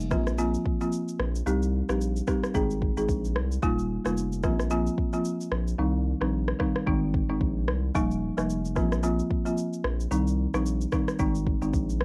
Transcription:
Already playing: sub bass F1
0.00 shaker
0.11 sub bass A#1, marimba F3 A#3 C4 F4, kick, cross-stick, shaker
0.27 cross-stick, shaker
0.38 marimba F3 A#3 C4 F4, shaker
0.54 shaker
0.65 kick
0.81 marimba F3 A#3 C4 F4, shaker
0.92 shaker
1.08 shaker
1.19 sub bass A#1, cross-stick
1.35 shaker
1.46 sub bass C2, marimba G3 C4 D#4 G4, shaker
1.62 shaker
1.89 sub bass A#1, marimba G3 C4 D#4 G4, cross-stick, shaker
2.01 shaker
2.16 shaker
2.27 marimba G3 C4 D#4 G4, kick, cross-stick, shaker
2.43 cross-stick, shaker
2.54 sub bass G#1, marimba G#3 C4 D#4 G#4, kick, shaker
2.71 shaker
2.82 kick
2.97 sub bass G#1, marimba G#3 C4 D#4 G#4, shaker
3.09 sub bass A#1, kick, shaker
3.25 shaker
3.36 sub bass C2, cross-stick
3.52 shaker
3.62 sub bass D#1, marimba G3 A#3 D#4 F4, kick, shaker
3.79 shaker
4.05 sub bass F1, marimba G3 A#3 D#4 F4, cross-stick, shaker
4.17 shaker
4.32 shaker
4.43 sub bass A#1, marimba F3 A#3 C4 F4, kick, cross-stick, shaker
4.60 cross-stick, shaker
4.70 marimba F3 A#3 C4 F4, shaker
4.87 shaker
4.98 kick
5.13 marimba F3 A#3 C4 F4, shaker
5.25 shaker
5.41 shaker
5.52 sub bass A#1, cross-stick
5.68 shaker
5.78 sub bass C2, marimba D#3 G3 C4 D#4
6.21 sub bass A#1, marimba D#3 G3 C4 D#4, cross-stick
6.48 cross-stick
6.59 marimba D#3 G3 C4 D#4, kick, cross-stick
6.76 cross-stick
6.87 sub bass G#1, marimba D#3 G#3 C4 D#4, kick
7.14 kick
7.29 sub bass G#1, marimba D#3 G#3 C4 D#4
7.41 sub bass A#1, kick
7.68 sub bass C2, cross-stick
7.95 sub bass D#1, marimba F3 G3 A#3 D#4, kick, shaker
8.11 shaker
8.37 sub bass F1, marimba F3 G3 A#3 D#4, cross-stick, shaker
8.50 shaker
8.65 shaker
8.76 sub bass A#1, marimba F3 A#3 C4 F4, kick, cross-stick, shaker
8.92 cross-stick, shaker
9.03 marimba F3 A#3 C4 F4, shaker
9.19 shaker
9.30 kick
9.46 marimba F3 A#3 C4 F4, shaker
9.57 shaker
9.73 shaker
9.84 sub bass A#1, cross-stick
10.00 shaker
10.11 sub bass C2, marimba D#3 G3 C4 D#4, shaker
10.27 shaker
10.54 sub bass A#1, marimba D#3 G3 C4 D#4, cross-stick, shaker
10.66 shaker
10.81 shaker
10.92 marimba D#3 G3 C4 D#4, kick, cross-stick, shaker
11.08 cross-stick, shaker
11.19 sub bass G#1, marimba D#3 G#3 C4 D#4, kick, shaker
11.35 shaker
11.47 kick
11.62 sub bass G#1, marimba D#3 G#3 C4 D#4, shaker
11.73 sub bass A#1, kick, shaker
11.89 shaker
12.01 sub bass C2, cross-stick

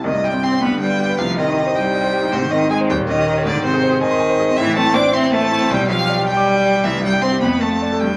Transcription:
0.04 grand piano C2, cello D#3, violin D#5
0.14 grand piano G2
0.23 cello G3, grand piano G3, violin G5
0.33 grand piano C4
0.42 cello C4, grand piano G4, violin C6
0.52 grand piano C4
0.61 grand piano G2, cello B3, violin B5
0.71 grand piano D3
0.80 cello G3, grand piano B3, violin G5
0.90 grand piano F4
0.99 grand piano G4
1.09 grand piano B4
1.18 grand piano C2, cello F3, violin F5
1.28 grand piano G2
1.37 cello D#3, grand piano C4, violin D#5
1.48 grand piano D#4
1.57 grand piano G4
1.66 grand piano C5
1.75 cello G3, grand piano D#5, violin G5
1.84 grand piano G5
1.94 grand piano D#5
2.04 grand piano C5
2.13 grand piano G4
2.22 grand piano D#4
2.32 grand piano G#2, cello C3, violin C5
2.42 grand piano D#3
2.51 cello D#3, grand piano C4, violin D#5
2.61 grand piano D#4
2.70 cello G#3, grand piano G#4, violin G#5
2.81 grand piano C5
2.90 grand piano D#2, cello G3, violin G5
2.99 grand piano A#2
3.08 cello D#3, grand piano C#4, violin D#5
3.18 grand piano G4
3.27 grand piano A#4
3.37 grand piano C#5
3.45 grand piano G#2, cello D3, violin D5
3.55 grand piano D#3
3.63 cello C3, grand piano C4, violin C5
3.74 grand piano G#4
3.83 grand piano C5
3.92 grand piano G#4
4.01 cello D#3, violin D#5, grand piano G#5
4.11 grand piano C6
4.20 grand piano G#5
4.30 grand piano C5
4.40 grand piano G#4
4.49 grand piano C4
4.56 grand piano A2, cello E3, violin E5
4.67 grand piano E3
4.76 cello A3, grand piano C4, violin A5
4.86 grand piano E4
4.94 cello D4, grand piano C5, violin D6
5.04 grand piano E4
5.13 cello C4, grand piano E5, violin C6
5.24 grand piano C6
5.32 cello A3, grand piano E5, violin A5
5.43 grand piano C5
5.51 grand piano E4
5.61 grand piano C4
5.70 grand piano B1, cello G3, violin G5
5.80 grand piano B2
5.88 cello F3, grand piano G3, violin F5
6.00 grand piano G4
6.09 grand piano D5
6.17 grand piano G4
6.27 cello G3, grand piano G5, violin G5
6.37 grand piano D6
6.46 grand piano G5
6.56 grand piano G4
6.65 grand piano D5
6.75 grand piano G4
6.84 grand piano C2, cello E3, violin E5
6.94 grand piano G2
7.03 grand piano G3, cello G3, violin G5
7.13 grand piano G4
7.22 cello C4, grand piano C5, violin C6
7.32 grand piano G4
7.40 grand piano F2, cello B3, violin B5
7.52 grand piano F3
7.60 cello A3, grand piano A3, violin A5
7.72 grand piano F4
7.82 grand piano D5
7.92 grand piano A4
8.00 grand piano G2, cello G3, violin G5
8.12 grand piano G3

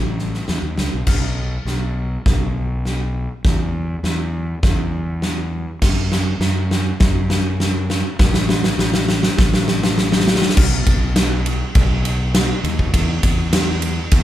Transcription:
Already playing: fingered electric bass A1
0.19 snare
0.34 snare
0.48 fingered electric bass E2, snare
0.62 fingered electric bass D#2
0.78 fingered electric bass C#2, snare
0.94 fingered electric bass B1
1.07 fingered electric bass B1, kick, snare, crash
1.65 fingered electric bass B1, snare
2.26 fingered electric bass B1, kick, snare
2.85 snare
3.45 fingered electric bass E2, kick, snare
4.03 fingered electric bass E2, snare
4.63 fingered electric bass E2, kick, snare
5.22 snare
5.82 fingered electric bass F#2, kick, snare, crash
6.12 snare
6.39 fingered electric bass F#2, snare
6.71 snare
7.00 fingered electric bass F#2, kick, snare
7.30 snare
7.60 snare
7.90 snare
8.19 fingered electric bass A1, kick, snare
8.34 snare
8.49 snare
8.64 snare
8.78 fingered electric bass A1, snare
8.94 snare
9.09 snare
9.23 snare
9.38 fingered electric bass A1, kick, snare
9.54 snare
9.68 snare
9.83 snare
9.98 snare
10.12 snare
10.20 snare
10.27 snare
10.35 snare
10.42 snare
10.49 snare
10.57 fingered electric bass B1, kick, crash
10.86 fingered electric bass B1, kick, ride
11.16 snare, ride
11.46 ride
11.75 fingered electric bass B1, kick, ride
12.05 ride
12.35 snare, ride
12.64 fingered electric bass D#2, ride
12.79 kick
12.94 fingered electric bass E2, kick, ride
13.23 fingered electric bass E2, kick, ride
13.53 snare, ride
13.82 ride
14.11 fingered electric bass E2, kick, ride

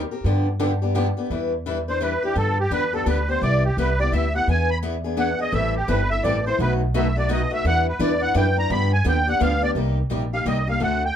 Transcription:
0.11 steel-string acoustic guitar C4 G4 A#4
0.24 upright bass G2, steel-string acoustic guitar D3 F3 B3 D4 G4
0.60 steel-string acoustic guitar D3 F3 B3 D4 G4
0.82 steel-string acoustic guitar B3 D4 G4
0.95 steel-string acoustic guitar D3 F3 B3 D4 G4
1.17 steel-string acoustic guitar B3 D4 G4
1.30 upright bass E2, steel-string acoustic guitar E3 G3 D4 E4 B4
1.66 steel-string acoustic guitar E3 G3 D4 E4 B4
1.88 steel-string acoustic guitar D4 E4 B4, accordion C5
2.01 steel-string acoustic guitar E3 G3 D4 E4 B4, accordion B4
2.23 steel-string acoustic guitar D4 E4 B4, accordion G4
2.35 upright bass G2, steel-string acoustic guitar D3 F3 B3 D4 G4, accordion A4
2.60 accordion G4
2.71 upright bass E2, steel-string acoustic guitar D3 F3 B3 D4 G4, accordion B4
2.93 steel-string acoustic guitar B3 D4 G4, accordion A4
3.06 upright bass D2, steel-string acoustic guitar D3 F3 B3 D4 G4, accordion B4
3.29 steel-string acoustic guitar B3 D4 G4, accordion C5
3.42 upright bass C2, steel-string acoustic guitar C3 G3 B3 E4 G4, accordion D5
3.65 accordion G4
3.77 upright bass C2, steel-string acoustic guitar C3 G3 B3 E4 G4, accordion B4
4.00 steel-string acoustic guitar B3 E4 G4, accordion D5
4.12 upright bass D2, steel-string acoustic guitar C3 G3 B3 E4 G4, accordion E5
4.35 steel-string acoustic guitar B3 E4 G4, accordion F#5
4.48 upright bass E2, steel-string acoustic guitar E3 B3 D4 G#4, accordion G#5
4.71 accordion B5
4.83 steel-string acoustic guitar E3 B3 D4 G#4
5.04 steel-string acoustic guitar B3 D4 G#4
5.17 steel-string acoustic guitar E3 B3 D4 G#4, accordion F#5
5.39 steel-string acoustic guitar B3 D4 G#4, accordion D#5
5.52 upright bass A1, steel-string acoustic guitar E3 G3 C4 E4 A4, accordion E5
5.76 accordion G4
5.88 upright bass G1, steel-string acoustic guitar E3 G3 C4 E4 A4, accordion B4
6.10 steel-string acoustic guitar C4 E4 A4, accordion E5
6.24 upright bass A1, steel-string acoustic guitar E3 G3 C4 E4 A4, accordion D5
6.46 steel-string acoustic guitar C4 E4 A4, accordion C5
6.59 upright bass B1, steel-string acoustic guitar B2 F#3 A3 D#4 F#4 B4, accordion B4
6.94 steel-string acoustic guitar B2 F#3 A3 D#4 F#4 B4, accordion E5
7.16 steel-string acoustic guitar A3 D#4 F#4, accordion D5
7.29 steel-string acoustic guitar B2 F#3 A3 D#4 F#4 B4, accordion D#5
7.50 steel-string acoustic guitar A3 D#4 F#4, accordion E5
7.65 upright bass E2, steel-string acoustic guitar E3 G3 D4 E4 B4, accordion F#5
7.89 accordion B4
7.99 upright bass E2, steel-string acoustic guitar E3 G3 D4 E4 B4, accordion D5
8.20 steel-string acoustic guitar D4 E4 B4, accordion F#5
8.34 upright bass F#2, steel-string acoustic guitar E3 G3 D4 E4 B4, accordion G5
8.56 steel-string acoustic guitar D4 E4 B4, accordion A#5
8.70 upright bass G2, steel-string acoustic guitar D3 F3 B3 D4 G4, accordion B5
8.93 accordion G#5
9.04 upright bass D#2, steel-string acoustic guitar D3 F3 B3 D4 G4, accordion G5
9.27 steel-string acoustic guitar B3 D4 G4, accordion F#5
9.40 upright bass D2, steel-string acoustic guitar D3 F3 B3 D4 G4, accordion F5
9.61 steel-string acoustic guitar B3 D4 G4, accordion D5
9.75 upright bass C2, steel-string acoustic guitar C3 G3 A#3 D#4 G4
10.10 upright bass A#1, steel-string acoustic guitar C3 G3 A#3 D#4 G4
10.33 steel-string acoustic guitar A#3 D#4 G4, accordion F5
10.46 upright bass C2, steel-string acoustic guitar C3 G3 A#3 D#4 G4, accordion D#5
10.67 steel-string acoustic guitar A#3 D#4 G4, accordion F5
10.80 upright bass D2, steel-string acoustic guitar D3 A3 C4 F#4 A4, accordion F#5
11.05 accordion G5

